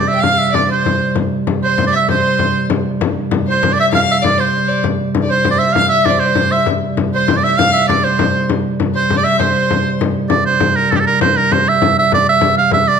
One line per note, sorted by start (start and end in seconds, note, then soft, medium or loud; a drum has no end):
0.00 3.00 C3 medium
0.00 3.00 G3 medium
0.00 0.14 D5 medium
0.08 0.24 E5 loud
0.08 frame drum soft
0.15 0.21 G5 medium
0.20 0.51 F5 medium
0.20 0.40 F5 loud
0.20 frame drum medium
0.38 0.56 E5 medium
0.51 0.67 D5 medium
0.51 0.70 D5 medium
0.51 frame drum medium
0.68 1.12 C5 medium
0.68 1.14 C5 medium
0.86 frame drum medium
1.01 frame drum soft
1.16 frame drum medium
1.47 frame drum medium
1.63 1.91 C5 medium
1.63 1.84 C5 medium
1.78 frame drum medium
1.87 1.93 D5 medium
1.92 1.99 E5 medium
1.92 2.09 E5 loud
1.92 frame drum soft
2.08 2.66 C5 medium
2.08 2.67 C5 medium
2.08 frame drum medium
2.24 frame drum soft
2.39 frame drum medium
2.55 frame drum soft
2.70 frame drum medium
3.01 6.65 C3 medium
3.01 6.66 G3 medium
3.01 frame drum medium
3.31 frame drum medium
3.47 3.73 C5 medium
3.47 3.74 C5 medium
3.63 frame drum medium
3.71 3.76 D5 medium
3.71 3.79 D5 medium
3.77 3.91 E5 medium
3.77 3.87 E5 loud
3.77 frame drum soft
3.93 4.23 F5 medium
3.93 4.01 F5 loud
3.93 frame drum medium
4.11 4.17 E5 medium
4.22 4.39 D5 medium
4.22 4.41 D5 medium
4.22 frame drum medium
4.38 4.69 C5 medium
4.38 4.85 C5 medium
4.68 4.84 D5 medium
4.68 frame drum soft
4.84 frame drum medium
5.15 frame drum medium
5.22 5.32 D5 medium
5.30 5.50 C5 medium
5.30 5.62 C5 medium
5.45 frame drum medium
5.51 5.60 D5 medium
5.59 5.74 E5 loud
5.59 5.76 E5 medium
5.59 frame drum soft
5.73 5.88 F5 loud
5.73 5.90 F5 medium
5.73 frame drum medium
5.88 6.07 E5 loud
5.88 6.11 E5 medium
6.05 6.21 D5 medium
6.05 frame drum medium
6.09 6.15 C5 medium
6.09 6.11 D5 medium
6.13 6.21 D5 medium
6.19 6.53 C5 medium
6.19 6.54 C5 medium
6.19 frame drum soft
6.35 frame drum medium
6.52 6.67 E5 medium
6.66 10.27 C3 medium
6.66 10.28 G3 medium
6.66 frame drum medium
6.97 frame drum medium
7.14 7.39 C5 medium
7.14 7.38 C5 medium
7.28 frame drum medium
7.36 7.45 D5 medium
7.36 7.44 D5 medium
7.44 7.59 E5 loud
7.44 7.56 E5 medium
7.44 frame drum soft
7.57 7.86 F5 loud
7.57 7.72 F5 loud
7.57 frame drum medium
7.73 7.87 E5 loud
7.88 8.05 D5 medium
7.88 frame drum medium
8.04 8.49 C5 medium
8.19 frame drum medium
8.34 frame drum soft
8.49 frame drum medium
8.80 frame drum medium
8.94 9.18 C5 medium
8.94 9.17 C5 medium
9.10 frame drum medium
9.17 9.27 D5 medium
9.17 9.26 D5 medium
9.24 9.39 E5 loud
9.24 9.41 E5 medium
9.24 frame drum soft
9.39 9.96 C5 medium
9.39 10.00 C5 medium
9.39 frame drum medium
9.71 frame drum medium
10.01 frame drum medium
10.29 13.00 C3 medium
10.29 13.00 G3 medium
10.29 10.44 D5 medium
10.29 frame drum medium
10.45 10.78 C5 medium
10.60 frame drum medium
10.76 10.92 A#4 medium
10.91 10.97 A4 medium
10.91 frame drum medium
10.96 11.01 G4 medium
10.96 11.06 A4 medium
11.07 11.20 A#4 loud
11.07 frame drum soft
11.21 11.38 C5 loud
11.21 frame drum medium
11.37 11.54 A#4 medium
11.52 11.70 C5 loud
11.52 frame drum medium
11.68 11.97 E5 loud
11.82 frame drum medium
11.99 12.12 E5 loud
11.99 frame drum soft
12.12 12.27 D5 loud
12.12 frame drum medium
12.29 12.56 E5 loud
12.41 frame drum medium
12.58 12.71 F5 loud
12.71 12.90 E5 loud
12.71 frame drum medium
12.87 13.00 D5 loud
12.87 frame drum soft